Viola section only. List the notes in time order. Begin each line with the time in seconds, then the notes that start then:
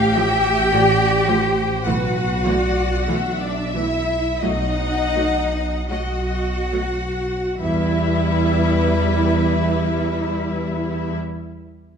0.15 F3 A3
0.71 F3 A3
1.27 F3 A3
1.86 E3 A3
2.45 E3 A3
3.08 E3 A3
3.74 E3 A3
4.43 F#3 A3
5.15 F#3 A3
5.90 F#3 A3
6.73 F#3 A3
7.59 G3 E4